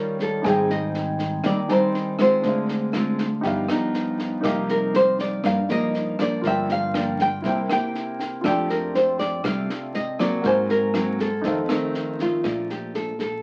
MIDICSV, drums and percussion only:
0, 0, Header, 1, 2, 480
1, 0, Start_track
1, 0, Tempo, 500000
1, 424, Time_signature, 4, 2, 24, 8
1, 12886, End_track
2, 0, Start_track
2, 0, Title_t, "Drums"
2, 185, Note_on_c, 9, 36, 24
2, 187, Note_on_c, 9, 38, 22
2, 281, Note_off_c, 9, 36, 0
2, 283, Note_off_c, 9, 38, 0
2, 426, Note_on_c, 9, 36, 61
2, 429, Note_on_c, 9, 37, 58
2, 429, Note_on_c, 9, 38, 26
2, 522, Note_off_c, 9, 36, 0
2, 525, Note_off_c, 9, 37, 0
2, 525, Note_off_c, 9, 38, 0
2, 670, Note_on_c, 9, 38, 20
2, 766, Note_off_c, 9, 38, 0
2, 904, Note_on_c, 9, 38, 23
2, 1000, Note_off_c, 9, 38, 0
2, 1142, Note_on_c, 9, 36, 25
2, 1142, Note_on_c, 9, 38, 26
2, 1238, Note_off_c, 9, 36, 0
2, 1238, Note_off_c, 9, 38, 0
2, 1379, Note_on_c, 9, 37, 55
2, 1379, Note_on_c, 9, 38, 23
2, 1383, Note_on_c, 9, 36, 63
2, 1475, Note_off_c, 9, 37, 0
2, 1475, Note_off_c, 9, 38, 0
2, 1479, Note_off_c, 9, 36, 0
2, 1620, Note_on_c, 9, 38, 25
2, 1716, Note_off_c, 9, 38, 0
2, 1864, Note_on_c, 9, 38, 19
2, 1960, Note_off_c, 9, 38, 0
2, 2099, Note_on_c, 9, 37, 58
2, 2099, Note_on_c, 9, 38, 21
2, 2100, Note_on_c, 9, 36, 22
2, 2195, Note_off_c, 9, 37, 0
2, 2195, Note_off_c, 9, 38, 0
2, 2196, Note_off_c, 9, 36, 0
2, 2334, Note_on_c, 9, 38, 23
2, 2339, Note_on_c, 9, 36, 59
2, 2430, Note_off_c, 9, 38, 0
2, 2435, Note_off_c, 9, 36, 0
2, 2577, Note_on_c, 9, 38, 22
2, 2673, Note_off_c, 9, 38, 0
2, 2815, Note_on_c, 9, 37, 57
2, 2815, Note_on_c, 9, 38, 22
2, 2911, Note_off_c, 9, 37, 0
2, 2911, Note_off_c, 9, 38, 0
2, 3056, Note_on_c, 9, 38, 25
2, 3058, Note_on_c, 9, 36, 23
2, 3152, Note_off_c, 9, 38, 0
2, 3154, Note_off_c, 9, 36, 0
2, 3298, Note_on_c, 9, 38, 24
2, 3299, Note_on_c, 9, 36, 58
2, 3394, Note_off_c, 9, 38, 0
2, 3395, Note_off_c, 9, 36, 0
2, 3538, Note_on_c, 9, 37, 61
2, 3538, Note_on_c, 9, 38, 26
2, 3634, Note_off_c, 9, 37, 0
2, 3634, Note_off_c, 9, 38, 0
2, 3782, Note_on_c, 9, 38, 21
2, 3878, Note_off_c, 9, 38, 0
2, 4018, Note_on_c, 9, 36, 23
2, 4021, Note_on_c, 9, 38, 21
2, 4114, Note_off_c, 9, 36, 0
2, 4117, Note_off_c, 9, 38, 0
2, 4258, Note_on_c, 9, 36, 60
2, 4260, Note_on_c, 9, 37, 61
2, 4260, Note_on_c, 9, 38, 26
2, 4354, Note_off_c, 9, 36, 0
2, 4356, Note_off_c, 9, 37, 0
2, 4356, Note_off_c, 9, 38, 0
2, 4498, Note_on_c, 9, 38, 22
2, 4594, Note_off_c, 9, 38, 0
2, 4741, Note_on_c, 9, 38, 27
2, 4837, Note_off_c, 9, 38, 0
2, 4979, Note_on_c, 9, 36, 23
2, 4982, Note_on_c, 9, 38, 27
2, 5075, Note_off_c, 9, 36, 0
2, 5078, Note_off_c, 9, 38, 0
2, 5219, Note_on_c, 9, 36, 55
2, 5222, Note_on_c, 9, 37, 53
2, 5222, Note_on_c, 9, 38, 22
2, 5315, Note_off_c, 9, 36, 0
2, 5318, Note_off_c, 9, 37, 0
2, 5318, Note_off_c, 9, 38, 0
2, 5461, Note_on_c, 9, 38, 25
2, 5557, Note_off_c, 9, 38, 0
2, 5703, Note_on_c, 9, 38, 19
2, 5799, Note_off_c, 9, 38, 0
2, 5940, Note_on_c, 9, 36, 22
2, 5942, Note_on_c, 9, 37, 55
2, 5942, Note_on_c, 9, 38, 22
2, 6036, Note_off_c, 9, 36, 0
2, 6038, Note_off_c, 9, 37, 0
2, 6038, Note_off_c, 9, 38, 0
2, 6180, Note_on_c, 9, 36, 55
2, 6182, Note_on_c, 9, 38, 26
2, 6276, Note_off_c, 9, 36, 0
2, 6278, Note_off_c, 9, 38, 0
2, 6422, Note_on_c, 9, 38, 22
2, 6518, Note_off_c, 9, 38, 0
2, 6665, Note_on_c, 9, 37, 61
2, 6665, Note_on_c, 9, 38, 24
2, 6761, Note_off_c, 9, 37, 0
2, 6761, Note_off_c, 9, 38, 0
2, 6900, Note_on_c, 9, 36, 24
2, 6903, Note_on_c, 9, 38, 25
2, 6996, Note_off_c, 9, 36, 0
2, 6999, Note_off_c, 9, 38, 0
2, 7142, Note_on_c, 9, 36, 59
2, 7142, Note_on_c, 9, 38, 24
2, 7238, Note_off_c, 9, 36, 0
2, 7238, Note_off_c, 9, 38, 0
2, 7388, Note_on_c, 9, 37, 59
2, 7388, Note_on_c, 9, 38, 25
2, 7484, Note_off_c, 9, 37, 0
2, 7484, Note_off_c, 9, 38, 0
2, 7628, Note_on_c, 9, 38, 20
2, 7724, Note_off_c, 9, 38, 0
2, 7863, Note_on_c, 9, 36, 24
2, 7869, Note_on_c, 9, 38, 25
2, 7959, Note_off_c, 9, 36, 0
2, 7965, Note_off_c, 9, 38, 0
2, 8103, Note_on_c, 9, 36, 64
2, 8106, Note_on_c, 9, 37, 63
2, 8106, Note_on_c, 9, 38, 26
2, 8199, Note_off_c, 9, 36, 0
2, 8202, Note_off_c, 9, 37, 0
2, 8202, Note_off_c, 9, 38, 0
2, 8347, Note_on_c, 9, 38, 21
2, 8443, Note_off_c, 9, 38, 0
2, 8589, Note_on_c, 9, 38, 25
2, 8685, Note_off_c, 9, 38, 0
2, 8823, Note_on_c, 9, 36, 25
2, 8828, Note_on_c, 9, 38, 25
2, 8919, Note_off_c, 9, 36, 0
2, 8924, Note_off_c, 9, 38, 0
2, 9062, Note_on_c, 9, 36, 57
2, 9063, Note_on_c, 9, 37, 58
2, 9063, Note_on_c, 9, 38, 22
2, 9158, Note_off_c, 9, 36, 0
2, 9159, Note_off_c, 9, 37, 0
2, 9159, Note_off_c, 9, 38, 0
2, 9308, Note_on_c, 9, 38, 25
2, 9404, Note_off_c, 9, 38, 0
2, 9541, Note_on_c, 9, 38, 21
2, 9637, Note_off_c, 9, 38, 0
2, 9783, Note_on_c, 9, 36, 23
2, 9787, Note_on_c, 9, 37, 56
2, 9787, Note_on_c, 9, 38, 20
2, 9879, Note_off_c, 9, 36, 0
2, 9883, Note_off_c, 9, 37, 0
2, 9883, Note_off_c, 9, 38, 0
2, 10021, Note_on_c, 9, 36, 62
2, 10023, Note_on_c, 9, 38, 26
2, 10117, Note_off_c, 9, 36, 0
2, 10119, Note_off_c, 9, 38, 0
2, 10263, Note_on_c, 9, 38, 20
2, 10359, Note_off_c, 9, 38, 0
2, 10501, Note_on_c, 9, 37, 58
2, 10501, Note_on_c, 9, 38, 24
2, 10597, Note_off_c, 9, 37, 0
2, 10597, Note_off_c, 9, 38, 0
2, 10743, Note_on_c, 9, 36, 26
2, 10747, Note_on_c, 9, 38, 22
2, 10839, Note_off_c, 9, 36, 0
2, 10843, Note_off_c, 9, 38, 0
2, 10982, Note_on_c, 9, 38, 23
2, 10983, Note_on_c, 9, 36, 51
2, 11078, Note_off_c, 9, 38, 0
2, 11079, Note_off_c, 9, 36, 0
2, 11222, Note_on_c, 9, 37, 63
2, 11222, Note_on_c, 9, 38, 28
2, 11318, Note_off_c, 9, 37, 0
2, 11318, Note_off_c, 9, 38, 0
2, 11466, Note_on_c, 9, 38, 21
2, 11562, Note_off_c, 9, 38, 0
2, 11704, Note_on_c, 9, 36, 24
2, 11706, Note_on_c, 9, 38, 23
2, 11800, Note_off_c, 9, 36, 0
2, 11802, Note_off_c, 9, 38, 0
2, 11944, Note_on_c, 9, 37, 55
2, 11944, Note_on_c, 9, 38, 21
2, 11945, Note_on_c, 9, 36, 56
2, 12040, Note_off_c, 9, 37, 0
2, 12040, Note_off_c, 9, 38, 0
2, 12041, Note_off_c, 9, 36, 0
2, 12188, Note_on_c, 9, 38, 21
2, 12284, Note_off_c, 9, 38, 0
2, 12425, Note_on_c, 9, 38, 21
2, 12521, Note_off_c, 9, 38, 0
2, 12663, Note_on_c, 9, 36, 22
2, 12663, Note_on_c, 9, 38, 22
2, 12759, Note_off_c, 9, 36, 0
2, 12759, Note_off_c, 9, 38, 0
2, 12886, End_track
0, 0, End_of_file